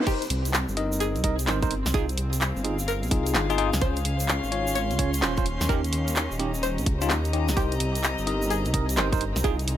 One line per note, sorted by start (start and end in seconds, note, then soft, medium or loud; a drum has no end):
0.07 3.82 C4 medium
0.07 0.23 D#4 medium
0.07 0.30 G4 loud
0.07 0.23 A#4 medium
0.07 0.23 C5 medium
0.07 kick loud
0.07 closed hi-hat medium
0.07 crash loud
0.07 shaker medium
0.22 closed hi-hat medium
0.22 shaker soft
0.30 0.66 C2 loud
0.30 open hi-hat loud
0.45 closed hi-hat medium
0.45 shaker medium
0.54 clap loud
0.54 shaker medium
0.69 1.17 G1 medium
0.69 shaker soft
0.77 1.22 D#4 medium
0.77 1.22 A#4 medium
0.77 1.22 D#5 medium
0.77 open hi-hat medium
0.92 shaker medium
1.00 1.18 G#4 medium
1.00 closed hi-hat medium
1.00 shaker medium
1.15 1.49 C2 loud
1.15 closed hi-hat soft
1.15 shaker soft
1.24 1.35 D#4 medium
1.24 1.35 A#4 medium
1.24 1.35 D#5 medium
1.24 kick medium
1.24 open hi-hat loud
1.39 closed hi-hat medium
1.39 shaker medium
1.47 1.83 G1 loud
1.47 1.58 D#4 medium
1.47 1.58 A#4 medium
1.47 1.58 C5 loud
1.47 clap loud
1.47 snare medium
1.47 shaker medium
1.62 1.73 D#4 medium
1.62 1.73 A#4 medium
1.62 1.73 C5 medium
1.62 kick loud
1.62 closed hi-hat soft
1.62 shaker soft
1.71 open hi-hat loud
1.86 2.16 C2 medium
1.86 snare medium
1.86 closed hi-hat soft
1.86 shaker medium
1.94 2.05 D#4 medium
1.94 2.05 F4 medium
1.94 2.18 G#4 loud
1.94 2.05 G#4 loud
1.94 kick loud
1.94 closed hi-hat medium
2.09 closed hi-hat medium
2.09 shaker soft
2.18 2.54 C2 loud
2.18 open hi-hat loud
2.33 closed hi-hat medium
2.33 shaker medium
2.41 clap loud
2.41 shaker medium
2.48 5.46 G#4 medium
2.48 6.33 F5 medium
2.56 3.05 G1 medium
2.56 shaker soft
2.64 2.76 D#4 medium
2.64 2.76 F4 medium
2.64 2.76 G#4 medium
2.64 open hi-hat loud
2.79 shaker medium
2.88 3.06 A#4 medium
2.88 closed hi-hat medium
2.88 shaker medium
3.03 3.36 C2 loud
3.03 closed hi-hat soft
3.03 shaker soft
3.11 3.46 D#4 medium
3.11 3.46 F4 medium
3.11 3.46 G#4 medium
3.11 kick loud
3.11 open hi-hat loud
3.26 closed hi-hat medium
3.26 shaker medium
3.34 3.71 G1 loud
3.34 clap loud
3.34 snare medium
3.34 shaker medium
3.50 3.57 D#4 loud
3.50 3.57 F4 medium
3.50 3.57 G#4 loud
3.50 closed hi-hat soft
3.50 shaker soft
3.58 3.69 D#4 loud
3.58 3.69 F4 medium
3.58 3.69 G#4 loud
3.58 open hi-hat medium
3.73 4.04 C#2 medium
3.73 snare medium
3.73 closed hi-hat soft
3.73 shaker medium
3.82 3.98 C#4 medium
3.82 7.57 C#4 medium
3.82 3.98 F4 medium
3.82 3.98 C5 medium
3.82 4.05 C5 loud
3.82 kick loud
3.82 closed hi-hat medium
3.96 closed hi-hat medium
3.96 shaker soft
4.05 4.41 C#2 loud
4.05 open hi-hat loud
4.20 closed hi-hat medium
4.20 shaker medium
4.26 6.33 C6 medium
4.26 clap loud
4.26 shaker medium
4.44 4.92 G#1 medium
4.44 shaker soft
4.52 4.97 C#4 medium
4.52 4.97 F4 medium
4.52 4.97 C#5 medium
4.52 open hi-hat medium
4.67 shaker medium
4.75 4.94 C#5 medium
4.75 closed hi-hat medium
4.75 shaker medium
4.91 5.24 C#2 loud
4.91 closed hi-hat soft
4.91 shaker soft
4.99 5.10 C#4 medium
4.99 5.10 F4 medium
4.99 5.10 C#5 medium
4.99 kick medium
4.99 open hi-hat loud
5.14 closed hi-hat medium
5.14 shaker medium
5.22 5.58 D#1 loud
5.22 5.33 C#4 medium
5.22 5.33 F4 medium
5.22 5.33 C5 loud
5.22 clap loud
5.22 snare medium
5.22 shaker medium
5.37 5.45 C#4 medium
5.37 5.45 F4 medium
5.37 5.45 C5 medium
5.37 kick loud
5.37 closed hi-hat soft
5.37 shaker soft
5.46 open hi-hat medium
5.61 5.91 D#2 medium
5.61 snare medium
5.61 closed hi-hat soft
5.61 shaker medium
5.69 5.80 C#4 medium
5.69 5.80 D#4 medium
5.69 5.80 G4 loud
5.69 5.93 A#4 loud
5.69 kick loud
5.69 closed hi-hat medium
5.84 closed hi-hat medium
5.84 shaker soft
5.93 6.29 D#2 loud
5.93 open hi-hat loud
6.05 9.44 G4 medium
6.05 9.77 D#5 medium
6.05 closed hi-hat medium
6.05 shaker medium
6.15 clap loud
6.15 shaker medium
6.31 6.80 D#1 medium
6.31 shaker soft
6.39 6.51 C#4 medium
6.39 6.51 D#4 medium
6.39 6.51 G4 medium
6.39 9.77 A#5 medium
6.39 snare soft
6.39 open hi-hat medium
6.54 shaker medium
6.63 6.81 C5 medium
6.63 closed hi-hat medium
6.63 shaker medium
6.78 7.11 C#2 medium
6.78 closed hi-hat soft
6.78 shaker soft
6.86 kick loud
6.86 open hi-hat loud
7.01 7.12 C#4 medium
7.01 7.12 D#4 medium
7.01 7.12 F4 loud
7.01 closed hi-hat medium
7.01 shaker medium
7.10 7.50 D#2 medium
7.10 clap loud
7.10 snare medium
7.10 shaker medium
7.25 closed hi-hat soft
7.25 shaker soft
7.33 7.50 C#4 medium
7.33 7.50 D#4 medium
7.33 7.50 G4 medium
7.33 open hi-hat medium
7.48 7.79 C2 medium
7.48 snare medium
7.48 closed hi-hat soft
7.48 shaker medium
7.57 9.77 C4 medium
7.57 7.73 D#4 medium
7.57 7.80 G4 medium
7.57 7.73 A#4 medium
7.57 7.73 C5 medium
7.57 kick loud
7.57 closed hi-hat medium
7.57 shaker medium
7.72 closed hi-hat medium
7.72 shaker soft
7.80 8.16 C2 loud
7.80 open hi-hat loud
7.95 closed hi-hat medium
7.95 shaker medium
8.03 clap loud
8.03 shaker medium
8.18 8.67 G1 medium
8.18 shaker soft
8.27 8.72 D#4 medium
8.27 8.72 A#4 medium
8.27 8.72 D#5 medium
8.27 open hi-hat medium
8.42 shaker medium
8.50 8.68 G#4 medium
8.50 closed hi-hat medium
8.50 shaker medium
8.65 8.99 C2 loud
8.65 closed hi-hat soft
8.65 shaker soft
8.74 8.85 D#4 medium
8.74 8.85 A#4 medium
8.74 8.85 D#5 medium
8.74 kick medium
8.74 open hi-hat loud
8.89 closed hi-hat medium
8.89 shaker medium
8.97 9.33 G1 loud
8.97 9.08 D#4 medium
8.97 9.08 A#4 medium
8.97 9.08 C5 loud
8.97 clap loud
8.97 snare medium
9.12 9.23 D#4 medium
9.12 9.23 A#4 medium
9.12 9.23 C5 loud
9.12 kick loud
9.12 closed hi-hat medium
9.12 shaker soft
9.21 open hi-hat medium
9.36 9.66 C2 medium
9.36 snare medium
9.36 closed hi-hat soft
9.36 shaker medium
9.44 9.55 D#4 medium
9.44 9.77 D#4 medium
9.44 9.55 F4 medium
9.44 9.55 G#4 loud
9.44 9.68 G#4 medium
9.44 kick loud
9.44 closed hi-hat medium
9.59 9.77 G#4 medium
9.59 closed hi-hat medium
9.59 shaker soft
9.68 9.77 C2 loud
9.68 open hi-hat loud